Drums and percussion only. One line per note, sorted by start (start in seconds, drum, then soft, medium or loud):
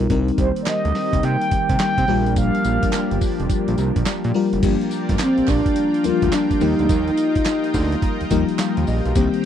0.10 kick loud
0.10 closed hi-hat medium
0.28 closed hi-hat medium
0.38 kick loud
0.38 closed hi-hat medium
0.56 closed hi-hat medium
0.66 snare loud
0.66 clap medium
0.66 closed hi-hat medium
0.85 closed hi-hat medium
0.95 snare medium
0.95 open hi-hat medium
1.13 kick loud
1.13 closed hi-hat medium
1.23 closed hi-hat medium
1.41 closed hi-hat medium
1.51 kick loud
1.51 closed hi-hat medium
1.69 kick medium
1.69 closed hi-hat medium
1.80 snare loud
1.80 clap medium
1.80 clap loud
1.80 closed hi-hat medium
1.98 kick medium
1.98 closed hi-hat medium
2.08 open hi-hat medium
2.26 closed hi-hat medium
2.36 kick loud
2.36 closed hi-hat medium
2.36 tambourine medium
2.55 closed hi-hat soft
2.65 closed hi-hat medium
2.65 tambourine medium
2.83 kick loud
2.83 closed hi-hat medium
2.93 snare loud
2.93 clap medium
2.93 closed hi-hat medium
2.93 tambourine medium
3.11 closed hi-hat medium
3.21 kick loud
3.21 open hi-hat medium
3.21 tambourine medium
3.40 closed hi-hat medium
3.50 kick loud
3.50 closed hi-hat medium
3.50 tambourine medium
3.68 closed hi-hat medium
3.78 closed hi-hat medium
3.78 tambourine medium
3.96 kick loud
3.96 closed hi-hat medium
4.06 snare loud
4.06 clap medium
4.06 clap loud
4.06 closed hi-hat medium
4.06 tambourine loud
4.24 closed hi-hat medium
4.34 open hi-hat medium
4.53 closed hi-hat medium
4.63 kick loud
4.63 closed hi-hat medium
4.63 crash loud
4.63 tambourine medium
4.81 closed hi-hat soft
4.91 closed hi-hat medium
4.91 tambourine medium
5.09 kick loud
5.09 closed hi-hat medium
5.19 snare loud
5.19 clap medium
5.19 closed hi-hat medium
5.19 tambourine medium
5.38 closed hi-hat medium
5.48 kick medium
5.48 clap medium
5.48 open hi-hat medium
5.48 tambourine medium
5.66 kick loud
5.66 closed hi-hat medium
5.76 closed hi-hat medium
5.94 closed hi-hat medium
6.04 closed hi-hat medium
6.04 tambourine medium
6.22 kick medium
6.22 closed hi-hat medium
6.32 snare loud
6.32 clap loud
6.32 clap medium
6.32 closed hi-hat medium
6.32 tambourine loud
6.51 kick medium
6.51 closed hi-hat medium
6.61 open hi-hat medium
6.61 tambourine medium
6.79 closed hi-hat medium
6.89 kick loud
6.89 closed hi-hat medium
6.89 tambourine medium
7.08 closed hi-hat medium
7.17 closed hi-hat medium
7.17 tambourine medium
7.35 kick medium
7.35 closed hi-hat medium
7.46 snare loud
7.46 clap medium
7.46 closed hi-hat medium
7.46 tambourine medium
7.64 closed hi-hat medium
7.74 kick medium
7.74 open hi-hat medium
7.74 tambourine medium
7.92 closed hi-hat medium
8.02 kick loud
8.02 closed hi-hat medium
8.21 closed hi-hat medium
8.30 kick loud
8.30 closed hi-hat medium
8.30 tambourine medium
8.49 closed hi-hat medium
8.59 snare loud
8.59 clap loud
8.59 clap medium
8.59 closed hi-hat medium
8.59 tambourine loud
8.77 closed hi-hat medium
8.87 open hi-hat medium
8.87 tambourine medium
9.06 closed hi-hat medium
9.15 kick loud
9.15 closed hi-hat medium
9.15 tambourine medium
9.34 closed hi-hat medium